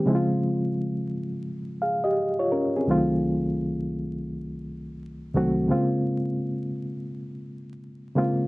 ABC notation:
X:1
M:4/4
L:1/16
Q:"Swing 16ths" 1/4=85
K:Fm
V:1 name="Reed electric piano"
z8 z2 [Af] [Ge]2 [Fd] [DB] [CA]- | [CA] z12 z3 | z16 |]
V:2 name="Reed electric piano"
[D,F,A,C_F=F]6 z8 z2 | [C,,E,_G,=A,CF]6 z8 [C,,E,G,A,C_G]2 | [D,A,B,CF]6 z8 [D,A,B,CF]2 |]